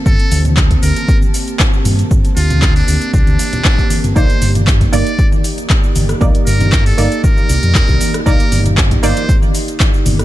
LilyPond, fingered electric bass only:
\new Staff \with { instrumentName = "Fingered electric bass" } { \clef bass \time 4/4 \key c \dorian \tempo 4 = 117 g,,16 r16 d,8. r16 d,16 r4. r16 g,16 r16 | g,,16 r16 d,8. r16 d,16 r16 c,16 d,16 r4 r16 g,,16 | c,16 r16 g,,8. r16 g,,16 r4. r16 g,,16 r16 | c,16 r16 g,,8. r16 g,,16 r8. c,16 f,16 r16 c,16 r8 |
c,16 r16 g,,8. r16 g,,16 r4. r16 g,,16 r16 | }